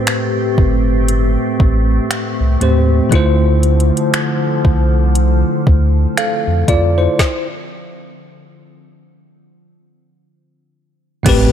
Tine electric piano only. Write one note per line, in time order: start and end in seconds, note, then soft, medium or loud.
0.00 2.56 A2 medium
0.00 2.57 A3 medium
0.00 2.58 C4 medium
0.00 2.58 G4 medium
0.00 3.15 B4 medium
0.00 2.62 C5 medium
2.60 3.12 A2 medium
2.60 3.10 A3 soft
2.60 3.12 C4 medium
2.60 3.13 G4 soft
2.60 3.13 C5 medium
3.10 7.14 D3 medium
3.10 7.14 A3 medium
3.10 6.13 E4 medium
3.14 6.14 F4 medium
3.14 6.15 C5 medium
6.18 6.66 A4 medium
6.18 6.66 F5 medium
6.68 6.97 F4 medium
6.68 6.96 D5 medium
6.98 7.46 E4 soft
6.98 7.46 C5 medium
11.23 11.52 A2 medium
11.23 11.52 A3 medium
11.23 11.52 C4 medium
11.27 11.52 G4 medium
11.27 11.52 B4 medium